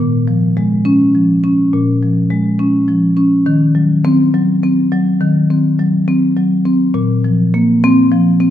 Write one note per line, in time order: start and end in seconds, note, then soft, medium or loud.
0.00 1.69 A#2 medium
0.28 0.74 F3 soft
0.57 1.03 G#3 medium
0.85 1.32 C#4 medium
1.15 1.61 F3 soft
1.44 1.90 C#4 medium
1.73 3.43 A#2 medium
2.02 2.48 F3 soft
2.30 2.77 G#3 medium
2.59 3.05 C#4 medium
2.88 3.35 F3 medium
3.17 3.46 C#4 medium
3.46 5.17 D#3 medium
3.75 4.22 F#3 medium
4.05 4.51 C4 medium
4.34 4.80 F#3 medium
4.63 5.09 C4 medium
4.92 5.38 F#3 medium
5.21 6.90 D#3 medium
5.50 5.96 C4 soft
5.79 6.25 F#3 medium
6.08 6.54 C4 medium
6.37 6.83 F#3 medium
6.65 6.94 C4 medium
6.94 8.50 A#2 medium
7.24 7.71 F3 medium
7.54 8.00 A#3 medium
7.84 8.29 C4 medium
8.12 8.50 F3 medium
8.40 8.50 C4 medium